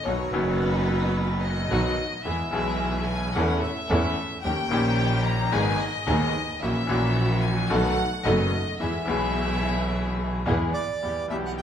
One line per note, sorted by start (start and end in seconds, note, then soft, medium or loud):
0.04 0.28 B1 medium
0.04 0.29 B2 medium
0.04 0.28 D#3 soft
0.04 0.28 F#3 soft
0.04 0.29 B3 soft
0.04 0.29 D#4 medium
0.04 0.29 F#4 medium
0.04 0.32 C#5 medium
0.31 1.63 F#1 loud
0.31 1.64 F#1 medium
0.31 1.64 F#2 medium
0.31 1.63 D#3 medium
0.31 1.63 F#3 medium
0.31 1.63 B3 medium
0.31 1.64 B3 medium
0.31 1.63 D#4 medium
0.31 1.63 F#4 medium
0.31 1.42 B4 medium
0.36 1.65 F#4 medium
1.42 2.25 D#5 medium
1.69 1.93 B1 medium
1.69 1.94 B1 medium
1.69 1.94 B2 medium
1.69 1.94 D#3 medium
1.69 1.94 F#3 medium
1.69 1.94 B3 medium
1.69 1.94 D#4 medium
1.69 1.94 F#4 medium
2.23 2.49 E2 soft
2.23 2.49 E2 medium
2.23 2.49 E3 soft
2.23 2.48 G#3 soft
2.23 2.48 B3 soft
2.23 2.48 B3 medium
2.23 2.49 E4 soft
2.23 2.49 G#4 medium
2.23 2.49 G#4 soft
2.23 3.03 E5 medium
2.51 3.31 B1 loud
2.51 3.31 B1 medium
2.51 3.31 B2 medium
2.51 3.30 E3 medium
2.51 3.31 G#3 medium
2.51 3.31 B3 medium
2.51 3.32 B3 medium
2.51 3.31 E4 medium
2.51 3.31 G#4 medium
2.55 3.32 G#4 medium
3.04 3.33 G#5 medium
3.33 3.59 E2 loud
3.33 3.59 E2 medium
3.33 3.59 E3 medium
3.33 3.59 A3 medium
3.33 3.58 C#4 medium
3.33 3.59 C#4 medium
3.33 3.59 E4 medium
3.33 3.59 A4 medium
3.33 3.62 F#5 medium
3.61 4.39 E5 loud
3.89 4.13 E2 loud
3.89 4.13 E2 medium
3.89 4.13 E3 medium
3.89 4.13 A3 medium
3.89 4.13 C#4 medium
3.89 4.13 E4 medium
3.89 4.13 A4 medium
4.42 4.67 D#2 soft
4.42 4.67 D#2 medium
4.42 4.67 D#3 soft
4.42 4.67 A#3 soft
4.42 4.67 C#4 soft
4.42 4.67 C#4 medium
4.42 4.67 D#4 soft
4.42 4.67 G4 soft
4.42 4.67 G4 medium
4.42 5.21 G5 loud
4.69 5.49 A#1 medium
4.69 5.49 A#1 loud
4.69 5.49 A#2 medium
4.69 5.48 D#3 medium
4.69 5.49 A#3 medium
4.69 5.49 C#4 medium
4.69 5.50 C#4 medium
4.69 5.49 D#4 medium
4.69 5.49 G4 medium
4.73 5.50 G4 medium
5.24 5.52 A#5 loud
5.52 5.76 G#1 medium
5.52 5.76 G#2 medium
5.52 5.76 D#3 medium
5.52 5.76 G#3 medium
5.52 5.76 B3 medium
5.52 5.76 D#4 medium
5.52 5.76 G#4 medium
5.52 5.80 G#5 loud
5.80 6.62 D#5 loud
6.06 6.30 D#1 medium
6.06 6.30 D#2 medium
6.06 6.31 D#2 loud
6.06 6.30 D#3 medium
6.06 6.30 G#3 medium
6.06 6.30 B3 medium
6.06 6.30 D#4 medium
6.06 6.30 G#4 medium
6.06 6.31 G#4 medium
6.61 6.85 A#1 medium
6.61 6.85 A#2 medium
6.61 6.85 E3 soft
6.61 6.85 A#3 medium
6.61 6.85 A#3 soft
6.61 6.85 C#4 soft
6.61 6.85 E4 medium
6.61 6.85 F#4 medium
6.61 7.43 E5 loud
6.87 7.67 A#1 loud
6.87 7.67 A#1 medium
6.87 7.67 A#2 medium
6.87 7.66 E3 medium
6.87 7.66 A#3 medium
6.87 7.67 A#3 medium
6.87 7.67 C#4 medium
6.87 7.66 E4 medium
6.87 7.67 F#4 medium
6.87 7.68 F#4 medium
7.42 7.70 G#5 medium
7.69 7.94 B1 medium
7.69 7.94 B2 medium
7.69 7.94 D#3 medium
7.69 7.94 A3 medium
7.69 7.94 B3 medium
7.69 7.94 D#4 medium
7.69 7.94 F#4 medium
7.69 7.94 A4 medium
7.69 8.25 F#5 loud
8.25 8.49 F#1 loud
8.25 8.49 F#1 medium
8.25 8.48 F#2 medium
8.25 8.48 D#3 medium
8.25 8.49 A3 medium
8.25 8.48 B3 medium
8.25 8.49 B3 medium
8.25 8.48 D#4 medium
8.25 8.49 F#4 medium
8.25 8.49 A4 medium
8.25 8.80 D#5 medium
8.80 9.03 E2 medium
8.80 9.04 E2 soft
8.80 9.04 E3 soft
8.80 9.04 G#3 soft
8.80 9.03 B3 medium
8.80 9.04 B3 soft
8.80 9.03 E4 soft
8.80 9.03 G#4 medium
8.80 9.04 G#4 soft
8.80 10.42 E5 medium
9.06 10.39 B1 medium
9.06 10.39 B1 loud
9.06 10.39 B2 medium
9.06 10.38 E3 medium
9.06 10.39 G#3 medium
9.06 10.39 B3 medium
9.06 10.40 B3 medium
9.06 10.39 E4 medium
9.06 10.39 G#4 medium
9.06 10.40 G#4 medium
10.45 10.70 E2 medium
10.45 10.70 E3 medium
10.45 10.70 G#3 medium
10.45 10.69 B3 medium
10.45 10.70 B3 medium
10.45 10.70 E4 medium
10.45 10.70 G#4 medium
10.74 11.26 D5 medium
11.02 11.26 E2 soft
11.02 11.27 E2 soft
11.02 11.26 E3 soft
11.02 11.26 G3 soft
11.02 11.26 B3 soft
11.02 11.26 E4 soft
11.02 11.26 G4 soft
11.02 11.27 G4 soft
11.28 11.62 B1 medium
11.28 11.62 B2 medium
11.28 11.62 E3 medium
11.28 11.62 G3 medium
11.28 11.62 B3 medium
11.28 11.62 B3 soft
11.28 11.62 E4 medium
11.28 11.62 G4 medium
11.28 11.36 E5 medium
11.32 11.62 G4 medium
11.46 11.52 F#5 medium
11.58 11.62 G5 medium